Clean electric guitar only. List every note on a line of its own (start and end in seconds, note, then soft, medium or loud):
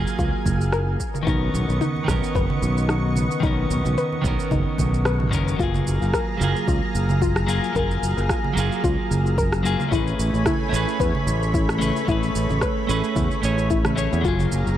0.00 0.97 F#3 medium
0.00 0.98 A#3 medium
0.00 0.99 F4 medium
0.00 1.00 G#4 medium
1.23 2.03 D#3 medium
1.23 2.04 B3 medium
1.27 2.05 C#4 medium
1.27 2.06 A#4 medium
2.04 3.38 D#3 medium
2.04 3.39 B3 medium
2.09 3.41 C#4 medium
2.09 3.42 A#4 medium
3.40 4.20 D#3 medium
3.40 4.21 B3 medium
3.45 4.22 C#4 medium
3.45 4.23 A#4 medium
4.21 5.29 D#3 medium
4.21 5.30 B3 medium
4.26 5.31 C#4 medium
4.26 5.32 A#4 medium
5.31 5.56 D#3 medium
5.31 5.56 B3 medium
5.31 5.57 C#4 medium
5.31 5.58 A#4 loud
5.56 6.36 F#3 medium
5.56 6.37 A#3 medium
5.61 6.39 F4 medium
5.61 6.40 G#4 medium
6.37 7.45 F#3 medium
6.37 7.46 A#3 medium
6.42 7.47 F4 medium
6.42 7.48 G#4 medium
7.47 7.71 F#3 medium
7.47 7.72 A#3 medium
7.47 7.73 F4 medium
7.47 7.74 G#4 loud
7.72 8.52 F#3 medium
7.72 8.53 A#3 medium
7.77 8.55 F4 medium
7.77 8.56 G#4 medium
8.53 9.61 F#3 medium
8.53 9.62 A#3 medium
8.58 9.63 F4 medium
8.58 9.64 G#4 medium
9.63 9.88 F#3 medium
9.63 9.89 A#3 medium
9.63 9.89 F4 medium
9.63 9.90 G#4 loud
9.88 10.68 A3 medium
9.88 10.69 C#4 medium
9.93 10.71 G#4 medium
9.93 10.72 B4 medium
10.69 11.77 A3 medium
10.69 11.78 C#4 medium
10.74 11.79 G#4 medium
10.74 11.80 B4 medium
11.78 12.04 A3 loud
11.78 12.05 C#4 medium
11.78 12.05 G#4 medium
11.78 12.06 B4 loud
12.05 12.85 A3 medium
12.05 12.86 C#4 medium
12.09 12.87 G#4 medium
12.09 12.88 B4 medium
12.87 13.40 A3 medium
12.87 13.41 C#4 medium
12.87 13.41 G#4 medium
12.87 13.42 B4 medium
13.42 13.94 A3 medium
13.42 13.94 C#4 medium
13.42 13.95 G#4 medium
13.42 13.95 C#5 medium
13.95 14.21 A3 medium
13.95 14.21 C#4 medium
13.95 14.22 G#4 medium
13.95 14.22 C#5 loud
14.21 14.78 F#3 medium
14.21 14.78 A#3 medium
14.26 14.78 F4 medium
14.26 14.78 G#4 medium